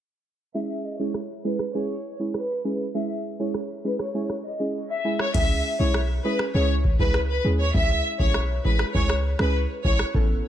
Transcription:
0.54 0.96 G#3 medium
0.54 0.96 C#4 medium
0.54 0.96 E4 medium
0.54 0.96 G#4 loud
0.54 0.68 E5 medium
0.84 0.98 D#5 medium
0.99 1.20 G#3 medium
0.99 1.20 C#4 medium
0.99 1.20 E4 medium
0.99 1.20 G#4 medium
0.99 1.13 C#5 medium
1.14 cross-stick medium
1.44 1.65 G#3 medium
1.44 1.65 C#4 medium
1.44 1.65 E4 medium
1.44 1.65 G#4 medium
1.44 1.58 B4 medium
1.59 cross-stick medium
1.74 1.95 G#3 medium
1.74 1.95 C#4 medium
1.74 1.95 E4 medium
1.74 1.95 G#4 loud
1.74 2.17 C#5 loud
2.19 2.40 G#3 medium
2.19 2.40 C#4 medium
2.19 2.40 E4 medium
2.19 2.40 G#4 medium
2.34 2.77 B4 medium
2.34 cross-stick medium
2.64 2.85 G#3 medium
2.64 2.85 C#4 medium
2.64 2.85 E4 medium
2.64 2.85 G#4 medium
2.94 3.36 G#3 medium
2.94 3.36 C#4 medium
2.94 3.36 E4 medium
2.94 3.36 G#4 loud
2.94 3.08 E5 loud
3.39 3.60 G#3 medium
3.39 3.60 C#4 medium
3.39 3.60 E4 medium
3.39 3.60 G#4 medium
3.39 3.53 C#5 medium
3.54 cross-stick medium
3.84 4.05 G#3 medium
3.84 4.05 C#4 medium
3.84 4.05 E4 medium
3.84 4.05 G#4 medium
3.84 3.98 B4 medium
3.99 4.13 C#5 medium
3.99 cross-stick medium
4.14 4.35 G#3 medium
4.14 4.35 C#4 medium
4.14 4.35 E4 medium
4.14 4.35 G#4 loud
4.14 4.28 C#5 medium
4.30 cross-stick medium
4.45 4.58 D#5 medium
4.59 4.80 G#3 medium
4.59 4.80 C#4 medium
4.59 4.80 E4 medium
4.59 4.80 G#4 medium
4.90 5.03 E5 medium
5.04 5.25 G#3 medium
5.04 5.25 C#4 medium
5.04 5.25 E4 medium
5.04 5.25 G#4 medium
5.19 5.33 C#5 medium
5.19 cross-stick medium
5.34 5.61 C#2 loud
5.34 5.76 G#3 medium
5.34 5.76 C#4 medium
5.34 5.76 E4 medium
5.34 5.76 G#4 loud
5.34 5.61 E5 loud
5.34 kick loud
5.34 crash medium
5.79 6.20 B1 medium
5.79 6.00 G#3 medium
5.79 6.00 C#4 medium
5.79 6.00 E4 medium
5.79 6.00 G#4 medium
5.79 5.93 C#5 medium
5.94 cross-stick medium
6.24 6.45 G#3 medium
6.24 6.45 C#4 medium
6.24 6.45 E4 medium
6.24 6.45 G#4 medium
6.24 6.38 B4 medium
6.39 cross-stick medium
6.54 6.95 C#2 loud
6.54 6.75 G#3 medium
6.54 6.75 C#4 medium
6.54 6.75 E4 medium
6.54 6.75 G#4 loud
6.54 6.68 C#5 medium
6.84 kick medium
6.99 7.39 C#2 medium
6.99 7.20 G#3 medium
6.99 7.20 C#4 medium
6.99 7.20 E4 medium
6.99 7.20 G#4 medium
6.99 7.13 B4 medium
6.99 kick medium
7.14 cross-stick medium
7.30 7.43 B4 medium
7.44 7.71 D#2 medium
7.44 7.65 G#3 medium
7.44 7.65 C#4 medium
7.44 7.65 E4 medium
7.44 7.65 G#4 medium
7.60 7.73 C#5 medium
7.74 8.01 C#2 loud
7.74 8.16 G#3 medium
7.74 8.16 C#4 medium
7.74 8.16 E4 medium
7.74 8.16 G#4 loud
7.74 8.01 E5 loud
7.74 kick loud
8.19 8.59 B1 loud
8.19 8.40 G#3 medium
8.19 8.40 C#4 medium
8.19 8.40 E4 medium
8.19 8.40 G#4 medium
8.19 8.33 C#5 medium
8.19 kick medium
8.34 cross-stick medium
8.64 8.85 G#3 medium
8.64 8.85 C#4 medium
8.64 8.85 E4 medium
8.64 8.85 G#4 medium
8.64 8.78 B4 medium
8.64 kick loud
8.79 cross-stick medium
8.94 9.35 C#2 loud
8.94 9.15 G#3 medium
8.94 9.15 C#4 medium
8.94 9.15 E4 medium
8.94 9.15 G#4 loud
8.94 9.08 C#5 medium
8.94 kick medium
9.10 cross-stick loud
9.39 9.66 C#2 medium
9.39 9.60 G#3 medium
9.39 9.60 C#4 medium
9.39 9.60 E4 medium
9.39 9.60 G#4 medium
9.39 9.53 B4 medium
9.39 cross-stick medium
9.84 9.98 B1 medium
9.84 10.05 G#3 medium
9.84 10.05 C#4 medium
9.84 10.05 E4 medium
9.84 10.05 G#4 medium
9.84 9.98 C#5 medium
9.84 kick medium
9.99 cross-stick medium
10.14 10.41 A1 loud
10.14 10.48 B3 medium
10.14 10.48 C#4 medium
10.14 10.48 E4 medium
10.14 10.48 A4 loud
10.14 kick loud

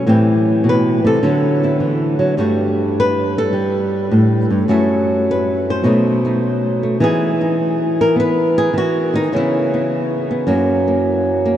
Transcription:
0.06 1.20 A2 medium
0.06 1.22 E3 soft
0.06 1.20 C4 soft
0.06 1.21 E4 soft
0.06 0.65 G4 medium
0.64 1.04 B2 medium
0.69 1.06 B4 medium
1.04 1.22 C3 medium
1.04 1.81 A4 medium
1.23 2.36 D3 medium
1.23 1.80 F#3 soft
1.23 1.62 B3 soft
1.23 1.63 E4 soft
1.63 2.36 B3 soft
1.63 2.36 E4 soft
1.80 2.19 E3 medium
2.19 2.37 F#3 medium
2.37 4.11 G2 medium
2.37 3.52 G3 soft
2.37 4.68 A3 soft
2.37 4.68 D4 soft
2.37 2.99 F#4 soft
3.00 3.37 B4 medium
3.38 4.12 A4 medium
3.53 4.67 G3 medium
4.11 4.50 A2 medium
4.50 4.68 G2 medium
4.68 5.84 F#2 medium
4.68 5.84 F#3 soft
4.68 5.84 A3 soft
4.68 5.83 E4 soft
4.68 5.28 A4 soft
5.31 5.69 B4 medium
5.70 6.44 C5 medium
5.84 7.00 B2 medium
5.84 6.98 F#3 soft
5.84 6.23 A3 soft
5.84 6.25 D#4 soft
6.25 6.82 A3 soft
6.25 6.99 D#4 soft
6.83 7.01 A3 soft
7.00 8.73 E3 medium
7.00 8.15 B3 soft
7.00 7.40 D#4 soft
7.00 8.00 G#4 medium
7.41 9.14 D#4 soft
8.01 8.18 A#4 medium
8.16 9.30 B3 medium
8.16 8.57 B4 medium
8.58 8.75 G#4 loud
8.74 9.14 E3 medium
8.78 9.16 F#4 loud
9.14 9.32 D#3 medium
9.14 9.33 D#4 medium
9.32 10.46 C#3 medium
9.32 10.47 E3 medium
9.32 9.73 B3 soft
9.32 11.08 E4 medium
9.74 10.29 B3 soft
10.31 10.46 B3 medium
10.47 11.57 F#2 medium
10.47 11.57 F#3 medium
10.47 10.86 A#3 medium
10.88 11.44 A#3 soft
11.45 11.57 A#3 medium

